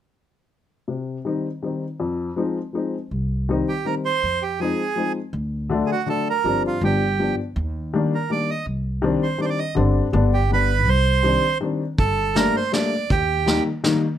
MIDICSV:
0, 0, Header, 1, 5, 480
1, 0, Start_track
1, 0, Key_signature, -3, "minor"
1, 0, Tempo, 373134
1, 1133, Time_signature, 3, 2, 24, 8
1, 4967, Tempo, 369458
1, 18377, End_track
2, 0, Start_track
2, 0, Title_t, "Bandoneon"
2, 0, Program_c, 0, 23
2, 4741, Note_on_c, 0, 67, 71
2, 4965, Note_on_c, 0, 70, 68
2, 4973, Note_off_c, 0, 67, 0
2, 5080, Note_off_c, 0, 70, 0
2, 5213, Note_on_c, 0, 72, 97
2, 5698, Note_on_c, 0, 67, 64
2, 5711, Note_off_c, 0, 72, 0
2, 5930, Note_on_c, 0, 68, 76
2, 5931, Note_off_c, 0, 67, 0
2, 6608, Note_off_c, 0, 68, 0
2, 7569, Note_on_c, 0, 68, 51
2, 7623, Note_off_c, 0, 68, 0
2, 7638, Note_on_c, 0, 66, 77
2, 7859, Note_off_c, 0, 66, 0
2, 7863, Note_on_c, 0, 69, 73
2, 8113, Note_off_c, 0, 69, 0
2, 8131, Note_on_c, 0, 70, 85
2, 8561, Note_off_c, 0, 70, 0
2, 8614, Note_on_c, 0, 65, 74
2, 8827, Note_off_c, 0, 65, 0
2, 8840, Note_on_c, 0, 67, 76
2, 9505, Note_off_c, 0, 67, 0
2, 10532, Note_on_c, 0, 70, 61
2, 10749, Note_off_c, 0, 70, 0
2, 10750, Note_on_c, 0, 74, 75
2, 10998, Note_on_c, 0, 75, 77
2, 11000, Note_off_c, 0, 74, 0
2, 11200, Note_off_c, 0, 75, 0
2, 11943, Note_on_c, 0, 72, 65
2, 12172, Note_off_c, 0, 72, 0
2, 12184, Note_on_c, 0, 74, 64
2, 12227, Note_on_c, 0, 72, 70
2, 12238, Note_off_c, 0, 74, 0
2, 12288, Note_on_c, 0, 74, 72
2, 12289, Note_off_c, 0, 72, 0
2, 12407, Note_on_c, 0, 75, 81
2, 12419, Note_off_c, 0, 74, 0
2, 12620, Note_off_c, 0, 75, 0
2, 13381, Note_on_c, 0, 67, 70
2, 13606, Note_off_c, 0, 67, 0
2, 13633, Note_on_c, 0, 71, 90
2, 14097, Note_on_c, 0, 72, 100
2, 14105, Note_off_c, 0, 71, 0
2, 14996, Note_off_c, 0, 72, 0
2, 15526, Note_on_c, 0, 69, 90
2, 16004, Note_on_c, 0, 70, 100
2, 16022, Note_off_c, 0, 69, 0
2, 16268, Note_off_c, 0, 70, 0
2, 16273, Note_on_c, 0, 72, 92
2, 16479, Note_off_c, 0, 72, 0
2, 16494, Note_on_c, 0, 74, 87
2, 16987, Note_off_c, 0, 74, 0
2, 16990, Note_on_c, 0, 67, 78
2, 17663, Note_off_c, 0, 67, 0
2, 18377, End_track
3, 0, Start_track
3, 0, Title_t, "Upright piano"
3, 0, Program_c, 1, 0
3, 1129, Note_on_c, 1, 48, 59
3, 1495, Note_off_c, 1, 48, 0
3, 1606, Note_on_c, 1, 51, 57
3, 1610, Note_on_c, 1, 55, 58
3, 1620, Note_on_c, 1, 60, 51
3, 1629, Note_on_c, 1, 63, 61
3, 1865, Note_off_c, 1, 51, 0
3, 1867, Note_off_c, 1, 55, 0
3, 1872, Note_off_c, 1, 60, 0
3, 1877, Note_off_c, 1, 63, 0
3, 2091, Note_on_c, 1, 51, 55
3, 2093, Note_on_c, 1, 55, 42
3, 2101, Note_on_c, 1, 60, 43
3, 2111, Note_on_c, 1, 63, 54
3, 2347, Note_off_c, 1, 51, 0
3, 2348, Note_off_c, 1, 55, 0
3, 2352, Note_off_c, 1, 60, 0
3, 2357, Note_off_c, 1, 63, 0
3, 2569, Note_on_c, 1, 41, 69
3, 2932, Note_off_c, 1, 41, 0
3, 3039, Note_on_c, 1, 53, 70
3, 3044, Note_on_c, 1, 56, 52
3, 3053, Note_on_c, 1, 60, 58
3, 3060, Note_on_c, 1, 63, 67
3, 3298, Note_off_c, 1, 53, 0
3, 3300, Note_off_c, 1, 56, 0
3, 3305, Note_off_c, 1, 60, 0
3, 3308, Note_off_c, 1, 63, 0
3, 3511, Note_on_c, 1, 53, 55
3, 3523, Note_on_c, 1, 56, 46
3, 3534, Note_on_c, 1, 60, 51
3, 3539, Note_on_c, 1, 63, 60
3, 3773, Note_off_c, 1, 53, 0
3, 3779, Note_off_c, 1, 56, 0
3, 3784, Note_off_c, 1, 60, 0
3, 3787, Note_off_c, 1, 63, 0
3, 4488, Note_on_c, 1, 51, 71
3, 4496, Note_on_c, 1, 55, 64
3, 4500, Note_on_c, 1, 60, 65
3, 4510, Note_on_c, 1, 63, 78
3, 4741, Note_off_c, 1, 51, 0
3, 4745, Note_off_c, 1, 55, 0
3, 4747, Note_off_c, 1, 60, 0
3, 4752, Note_off_c, 1, 63, 0
3, 4952, Note_on_c, 1, 51, 44
3, 4964, Note_on_c, 1, 55, 46
3, 4967, Note_on_c, 1, 60, 48
3, 4973, Note_on_c, 1, 63, 50
3, 5214, Note_off_c, 1, 51, 0
3, 5220, Note_off_c, 1, 55, 0
3, 5221, Note_off_c, 1, 60, 0
3, 5225, Note_off_c, 1, 63, 0
3, 5924, Note_on_c, 1, 53, 60
3, 5935, Note_on_c, 1, 56, 50
3, 5945, Note_on_c, 1, 60, 55
3, 5954, Note_on_c, 1, 63, 68
3, 6177, Note_off_c, 1, 53, 0
3, 6183, Note_off_c, 1, 56, 0
3, 6188, Note_off_c, 1, 60, 0
3, 6192, Note_off_c, 1, 63, 0
3, 6388, Note_on_c, 1, 53, 53
3, 6399, Note_on_c, 1, 56, 51
3, 6409, Note_on_c, 1, 60, 46
3, 6415, Note_on_c, 1, 63, 56
3, 6650, Note_off_c, 1, 53, 0
3, 6655, Note_off_c, 1, 56, 0
3, 6660, Note_off_c, 1, 60, 0
3, 6663, Note_off_c, 1, 63, 0
3, 7349, Note_on_c, 1, 50, 81
3, 7360, Note_on_c, 1, 54, 60
3, 7365, Note_on_c, 1, 57, 74
3, 7368, Note_on_c, 1, 62, 87
3, 7608, Note_off_c, 1, 50, 0
3, 7614, Note_off_c, 1, 54, 0
3, 7616, Note_off_c, 1, 57, 0
3, 7618, Note_off_c, 1, 62, 0
3, 7826, Note_on_c, 1, 50, 54
3, 7831, Note_on_c, 1, 54, 47
3, 7838, Note_on_c, 1, 57, 49
3, 7848, Note_on_c, 1, 62, 65
3, 8087, Note_off_c, 1, 50, 0
3, 8090, Note_off_c, 1, 54, 0
3, 8093, Note_off_c, 1, 57, 0
3, 8098, Note_off_c, 1, 62, 0
3, 8316, Note_on_c, 1, 53, 65
3, 8331, Note_on_c, 1, 55, 63
3, 8334, Note_on_c, 1, 60, 62
3, 8340, Note_on_c, 1, 62, 72
3, 8709, Note_off_c, 1, 53, 0
3, 8716, Note_off_c, 1, 55, 0
3, 8717, Note_off_c, 1, 60, 0
3, 8721, Note_off_c, 1, 62, 0
3, 8812, Note_on_c, 1, 53, 51
3, 8824, Note_on_c, 1, 55, 51
3, 8830, Note_on_c, 1, 62, 67
3, 8831, Note_on_c, 1, 59, 57
3, 9060, Note_off_c, 1, 53, 0
3, 9066, Note_off_c, 1, 55, 0
3, 9070, Note_off_c, 1, 59, 0
3, 9070, Note_off_c, 1, 62, 0
3, 9286, Note_on_c, 1, 53, 49
3, 9294, Note_on_c, 1, 55, 45
3, 9300, Note_on_c, 1, 59, 44
3, 9307, Note_on_c, 1, 62, 60
3, 9538, Note_off_c, 1, 53, 0
3, 9542, Note_off_c, 1, 55, 0
3, 9545, Note_off_c, 1, 59, 0
3, 9549, Note_off_c, 1, 62, 0
3, 10260, Note_on_c, 1, 51, 78
3, 10267, Note_on_c, 1, 55, 66
3, 10276, Note_on_c, 1, 58, 63
3, 10282, Note_on_c, 1, 62, 79
3, 10508, Note_off_c, 1, 51, 0
3, 10512, Note_off_c, 1, 55, 0
3, 10516, Note_off_c, 1, 58, 0
3, 10519, Note_off_c, 1, 62, 0
3, 10733, Note_on_c, 1, 51, 51
3, 10742, Note_on_c, 1, 58, 48
3, 10744, Note_on_c, 1, 55, 46
3, 10753, Note_on_c, 1, 62, 56
3, 10984, Note_off_c, 1, 51, 0
3, 10988, Note_off_c, 1, 58, 0
3, 10989, Note_off_c, 1, 55, 0
3, 10994, Note_off_c, 1, 62, 0
3, 11668, Note_on_c, 1, 51, 86
3, 11681, Note_on_c, 1, 55, 72
3, 11685, Note_on_c, 1, 60, 79
3, 11692, Note_on_c, 1, 62, 85
3, 11929, Note_off_c, 1, 51, 0
3, 11936, Note_off_c, 1, 55, 0
3, 11938, Note_off_c, 1, 60, 0
3, 11941, Note_off_c, 1, 62, 0
3, 12141, Note_on_c, 1, 51, 62
3, 12147, Note_on_c, 1, 55, 51
3, 12160, Note_on_c, 1, 60, 45
3, 12167, Note_on_c, 1, 62, 58
3, 12404, Note_off_c, 1, 51, 0
3, 12408, Note_off_c, 1, 55, 0
3, 12414, Note_off_c, 1, 60, 0
3, 12417, Note_off_c, 1, 62, 0
3, 12616, Note_on_c, 1, 50, 76
3, 12628, Note_on_c, 1, 55, 66
3, 12633, Note_on_c, 1, 60, 62
3, 12642, Note_on_c, 1, 62, 88
3, 13015, Note_off_c, 1, 50, 0
3, 13021, Note_off_c, 1, 55, 0
3, 13023, Note_off_c, 1, 60, 0
3, 13028, Note_off_c, 1, 62, 0
3, 13106, Note_on_c, 1, 55, 62
3, 13108, Note_on_c, 1, 50, 69
3, 13122, Note_on_c, 1, 59, 74
3, 13123, Note_on_c, 1, 62, 84
3, 13362, Note_off_c, 1, 55, 0
3, 13363, Note_off_c, 1, 50, 0
3, 13371, Note_off_c, 1, 59, 0
3, 13371, Note_off_c, 1, 62, 0
3, 13592, Note_on_c, 1, 50, 48
3, 13596, Note_on_c, 1, 55, 49
3, 13602, Note_on_c, 1, 59, 54
3, 13613, Note_on_c, 1, 62, 63
3, 13845, Note_off_c, 1, 50, 0
3, 13847, Note_off_c, 1, 55, 0
3, 13850, Note_off_c, 1, 59, 0
3, 13856, Note_off_c, 1, 62, 0
3, 14542, Note_on_c, 1, 51, 62
3, 14549, Note_on_c, 1, 55, 61
3, 14552, Note_on_c, 1, 60, 64
3, 14561, Note_on_c, 1, 62, 68
3, 14801, Note_off_c, 1, 51, 0
3, 14805, Note_off_c, 1, 55, 0
3, 14806, Note_off_c, 1, 60, 0
3, 14811, Note_off_c, 1, 62, 0
3, 15029, Note_on_c, 1, 55, 49
3, 15030, Note_on_c, 1, 51, 71
3, 15046, Note_on_c, 1, 60, 54
3, 15054, Note_on_c, 1, 62, 63
3, 15290, Note_off_c, 1, 51, 0
3, 15290, Note_off_c, 1, 55, 0
3, 15298, Note_off_c, 1, 60, 0
3, 15302, Note_off_c, 1, 62, 0
3, 15998, Note_on_c, 1, 55, 71
3, 16001, Note_on_c, 1, 57, 65
3, 16009, Note_on_c, 1, 58, 69
3, 16015, Note_on_c, 1, 62, 74
3, 16258, Note_off_c, 1, 55, 0
3, 16259, Note_off_c, 1, 57, 0
3, 16263, Note_off_c, 1, 58, 0
3, 16266, Note_off_c, 1, 62, 0
3, 16474, Note_on_c, 1, 55, 60
3, 16477, Note_on_c, 1, 57, 59
3, 16494, Note_on_c, 1, 58, 61
3, 16497, Note_on_c, 1, 62, 64
3, 16736, Note_off_c, 1, 55, 0
3, 16737, Note_off_c, 1, 57, 0
3, 16746, Note_off_c, 1, 58, 0
3, 16747, Note_off_c, 1, 62, 0
3, 17440, Note_on_c, 1, 51, 63
3, 17450, Note_on_c, 1, 55, 59
3, 17459, Note_on_c, 1, 58, 61
3, 17462, Note_on_c, 1, 63, 75
3, 17699, Note_off_c, 1, 51, 0
3, 17704, Note_off_c, 1, 55, 0
3, 17708, Note_off_c, 1, 58, 0
3, 17710, Note_off_c, 1, 63, 0
3, 17927, Note_on_c, 1, 51, 82
3, 17934, Note_on_c, 1, 55, 59
3, 17940, Note_on_c, 1, 58, 69
3, 17950, Note_on_c, 1, 63, 74
3, 18182, Note_off_c, 1, 51, 0
3, 18186, Note_off_c, 1, 55, 0
3, 18188, Note_off_c, 1, 58, 0
3, 18194, Note_off_c, 1, 63, 0
3, 18377, End_track
4, 0, Start_track
4, 0, Title_t, "Upright bass"
4, 0, Program_c, 2, 32
4, 4004, Note_on_c, 2, 36, 62
4, 4629, Note_off_c, 2, 36, 0
4, 5447, Note_on_c, 2, 41, 70
4, 6069, Note_off_c, 2, 41, 0
4, 6875, Note_on_c, 2, 38, 82
4, 7500, Note_off_c, 2, 38, 0
4, 8326, Note_on_c, 2, 31, 69
4, 8637, Note_off_c, 2, 31, 0
4, 8803, Note_on_c, 2, 31, 89
4, 9428, Note_off_c, 2, 31, 0
4, 9772, Note_on_c, 2, 39, 85
4, 10396, Note_off_c, 2, 39, 0
4, 11203, Note_on_c, 2, 36, 67
4, 11826, Note_off_c, 2, 36, 0
4, 12636, Note_on_c, 2, 31, 86
4, 12946, Note_off_c, 2, 31, 0
4, 13114, Note_on_c, 2, 31, 97
4, 14064, Note_off_c, 2, 31, 0
4, 14064, Note_on_c, 2, 36, 70
4, 14692, Note_off_c, 2, 36, 0
4, 15521, Note_on_c, 2, 31, 75
4, 16150, Note_off_c, 2, 31, 0
4, 16971, Note_on_c, 2, 39, 80
4, 17594, Note_off_c, 2, 39, 0
4, 18377, End_track
5, 0, Start_track
5, 0, Title_t, "Drums"
5, 15521, Note_on_c, 9, 36, 76
5, 15524, Note_on_c, 9, 42, 49
5, 15651, Note_off_c, 9, 36, 0
5, 15654, Note_off_c, 9, 42, 0
5, 16007, Note_on_c, 9, 38, 58
5, 16007, Note_on_c, 9, 42, 39
5, 16137, Note_off_c, 9, 38, 0
5, 16137, Note_off_c, 9, 42, 0
5, 16493, Note_on_c, 9, 38, 58
5, 16493, Note_on_c, 9, 42, 40
5, 16623, Note_off_c, 9, 38, 0
5, 16623, Note_off_c, 9, 42, 0
5, 16974, Note_on_c, 9, 36, 76
5, 16975, Note_on_c, 9, 42, 46
5, 17104, Note_off_c, 9, 36, 0
5, 17105, Note_off_c, 9, 42, 0
5, 17455, Note_on_c, 9, 38, 55
5, 17455, Note_on_c, 9, 42, 37
5, 17584, Note_off_c, 9, 38, 0
5, 17584, Note_off_c, 9, 42, 0
5, 17932, Note_on_c, 9, 38, 61
5, 17932, Note_on_c, 9, 42, 51
5, 18062, Note_off_c, 9, 38, 0
5, 18062, Note_off_c, 9, 42, 0
5, 18377, End_track
0, 0, End_of_file